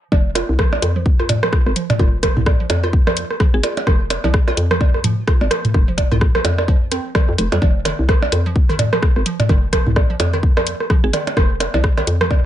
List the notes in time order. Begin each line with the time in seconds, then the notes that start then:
0.12 F1 F3, kick, percussion blips
0.35 F4, cross-stick, closed hi-hat, percussion blips
0.49 C2
0.59 F3, kick, cross-stick
0.73 percussion blips
0.82 F2, cross-stick, closed hi-hat
0.96 F3
1.06 kick
1.19 F4, cross-stick
1.29 closed hi-hat, mid tom, percussion blips
1.43 F3, cross-stick
1.53 kick, cross-stick
1.66 G#1, cross-stick
1.76 F3, closed hi-hat
1.90 closed hi-hat, mid tom, percussion blips
1.99 F1 F4, kick, cross-stick
2.23 F3, kick, cross-stick, closed hi-hat
2.37 C2, mid tom
2.46 kick, cross-stick, percussion blips
2.60 F3
2.70 F2, closed hi-hat, percussion blips
2.83 F4, cross-stick
2.93 kick
3.07 F3, cross-stick, percussion blips
3.17 closed hi-hat
3.31 cross-stick
3.40 F3, kick, cross-stick
3.54 G#1 G#4
3.63 F4, cross-stick, closed hi-hat, percussion blips
3.77 closed hi-hat, percussion blips
3.87 F1 F3, kick, cross-stick
4.10 cross-stick, closed hi-hat, percussion blips
4.24 C2 F3, percussion blips
4.34 kick, cross-stick
4.48 F4, cross-stick, percussion blips
4.57 F2, closed hi-hat
4.71 F3, cross-stick
4.81 kick, percussion blips
4.94 cross-stick
5.04 F3, closed hi-hat, mid tom
5.27 F4, kick, cross-stick
5.41 G#1, percussion blips
5.51 F3, cross-stick, closed hi-hat
5.65 closed hi-hat, mid tom
5.74 F1, kick, cross-stick
5.88 F3
5.98 kick, closed hi-hat, percussion blips
6.12 C2 F4, cross-stick, mid tom
6.21 kick, cross-stick
6.35 F3, cross-stick
6.45 F2, closed hi-hat, percussion blips
6.58 cross-stick, percussion blips
6.68 F3, kick
6.92 C4, cross-stick, closed hi-hat
7.15 F3, kick, cross-stick, percussion blips
7.29 F2
7.38 F1, cross-stick, closed hi-hat
7.52 F2 G3, closed hi-hat, percussion blips
7.62 F1 F3, kick, percussion blips
7.85 D#3, cross-stick, closed hi-hat, percussion blips
7.99 C2
8.09 F3, kick, cross-stick
8.22 percussion blips
8.32 F2, cross-stick, closed hi-hat
8.46 F3
8.56 kick
8.69 D#3, cross-stick
8.79 closed hi-hat, mid tom, percussion blips
8.93 F3, cross-stick
9.03 kick, cross-stick
9.16 G#1, cross-stick
9.26 F3, closed hi-hat
9.40 closed hi-hat, mid tom, percussion blips
9.49 F1 D#3, kick, cross-stick
9.73 F3, kick, cross-stick, closed hi-hat
9.87 C2, mid tom
9.96 kick, cross-stick, percussion blips
10.10 F3
10.20 F2, closed hi-hat, percussion blips
10.33 D#3, cross-stick
10.43 kick
10.57 F3, cross-stick, percussion blips
10.67 closed hi-hat
10.80 cross-stick
10.90 F3, kick, cross-stick
11.04 G#1 G#4
11.13 D#3, cross-stick, closed hi-hat, percussion blips
11.27 closed hi-hat, percussion blips
11.37 F1 F3, kick, cross-stick
11.60 cross-stick, closed hi-hat, percussion blips
11.74 C2 F3, percussion blips
11.84 kick, cross-stick
11.97 D#3, cross-stick, percussion blips
12.07 F2, closed hi-hat
12.21 F3, cross-stick
12.31 kick, percussion blips